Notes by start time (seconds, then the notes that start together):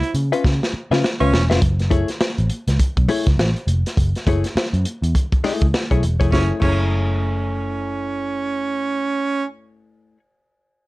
Already playing: E4
0.03 closed hi-hat
0.14 C#3, closed hi-hat
0.32 C#4 F4 B4 E5, closed hi-hat
0.44 C#3, kick, snare
0.63 snare
0.74 muted picked electric bass stroke
0.91 C#3 C#4 F4 B4 E5, snare
1.04 snare
1.20 C#2 C#4 F4 B4 E5
1.33 E1, snare
1.50 F1 C#4 F4 B4 E5, snare
1.62 F#1, kick, closed hi-hat
1.79 snare, closed hi-hat
1.90 A3 E4 G#4 C#5, kick, closed hi-hat
2.08 snare, closed hi-hat
2.21 snare
2.38 A1, closed hi-hat
2.50 closed hi-hat
2.68 C#2, snare, closed hi-hat
2.79 kick, closed hi-hat
2.97 B1, kick, closed hi-hat
3.08 A3 E4 G#4 C#5, open hi-hat
3.26 C#2, kick, snare, closed hi-hat
3.38 A1, snare
3.56 closed hi-hat
3.67 F1, closed hi-hat
3.86 snare, closed hi-hat
3.97 F#1, kick, closed hi-hat
4.15 snare, closed hi-hat
4.27 F#1 A3 E4 G#4 C#5, kick, closed hi-hat
4.44 snare, closed hi-hat
4.56 muted picked electric bass stroke, snare
4.73 F#2, closed hi-hat
4.85 closed hi-hat
5.02 E2, closed hi-hat
5.15 kick, closed hi-hat
5.32 kick, closed hi-hat
5.44 A3 E4 G#4 D#5, muted picked electric bass stroke, snare, open hi-hat
5.61 C#2, kick, closed hi-hat
5.74 snare
5.91 B1 A3 E4 G#4 C#5, kick, closed hi-hat
6.02 E1, closed hi-hat
6.20 F1 A3 E4 G#4 C#5, kick, closed hi-hat
6.31 F#1 A3 C#4 E4 G#4, kick, snare
6.36 C#5
6.60 F#1 A3 C#4 E4 G#4, kick, crash
6.65 C#5